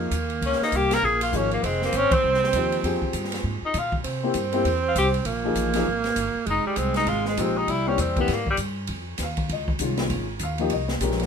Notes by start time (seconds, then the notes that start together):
Already playing: F2 A#3
0.11 D#2, kick, hi-hat pedal, ride
0.30 ride
0.41 C#2, kick, ride
0.46 C#4
0.52 snare
0.60 D#4, muted upright bass stroke, snare
0.72 C2 G4, kick, hi-hat pedal, ride
0.91 A#4, snare, ride
1.03 A#1 G#4, kick
1.21 F4, ride
1.32 G#1 F3 A#3 D#4 G#4, kick, hi-hat pedal
1.36 C#4
1.51 A#3, ride
1.62 F1 G#3 C4, kick, ride
1.82 A#3, snare
1.93 G#1, kick, hi-hat pedal, ride
1.97 C#4
2.11 C4, kick, ride
2.24 C2
2.34 snare
2.44 snare
2.53 D#2 F3 A#3 D#4 G4, kick, hi-hat pedal, ride
2.72 ride
2.84 F2 C4 F4 G4 G#4, kick, ride
3.02 muted upright bass stroke, kick
3.13 G2, kick, hi-hat pedal, ride
3.25 snare
3.32 snare, ride
3.44 G#2, kick
3.62 D#4, muted upright bass stroke
3.74 A#2, kick, hi-hat pedal, ride
3.78 F4
3.92 kick
4.04 C3 C4, kick, ride
4.23 A#3 C4 E4 G4
4.34 G2, kick, hi-hat pedal, ride
4.52 A#3 C4 E4 G4, ride
4.65 E2, kick, ride
4.88 F4
4.95 C2 G4, kick, hi-hat pedal, ride
5.14 ride
5.25 A#1 A#3, kick, ride
5.44 F3 A#3 D#4 G#4
5.55 A1, kick, hi-hat pedal, ride
5.74 F3 A#3 D#4 G#4, snare, ride
5.86 G#1, kick
6.04 snare, ride
6.16 G1, kick, hi-hat pedal, ride
6.35 muted upright bass stroke
6.46 F1 G#3 D#4, kick, ride
6.65 G3, muted upright bass stroke
6.76 C2 C4, kick, hi-hat pedal, ride
6.94 D#4, snare, ride
7.06 G#1 F4, kick, ride
7.25 G#3, snare
7.37 A#1 F3 A#3 C4 D#4 G4, kick, hi-hat pedal, ride
7.58 D#4
7.68 C2 G3 E4, kick, ride
7.86 A#3 C4 C#4 E4 G4
7.98 E2 C4, kick, hi-hat pedal, ride
8.16 A#3 C4 E4 G4, kick, ride
8.21 B3
8.28 G#2, kick, snare, ride
8.34 A#3
8.47 G3, kick
8.57 G2, kick, hi-hat pedal, ride
8.87 F2, kick, ride
9.18 D#2, kick, snare, hi-hat pedal, ride
9.23 F5
9.37 kick, ride
9.49 C#2 D#5, kick, ride
9.68 kick
9.79 C2 D#3 G#3 C#4 F4, kick, hi-hat pedal, ride
9.97 snare, ride
10.10 G#1, kick, ride
10.39 D#2 F5, kick, hi-hat pedal, ride
10.58 F3 A#3 D#4 G4, ride
10.70 C2 D#5, kick, ride
10.89 snare
11.01 A#1 G#3 C#4 G4 A#4, kick, hi-hat pedal, ride
11.11 snare
11.20 snare, ride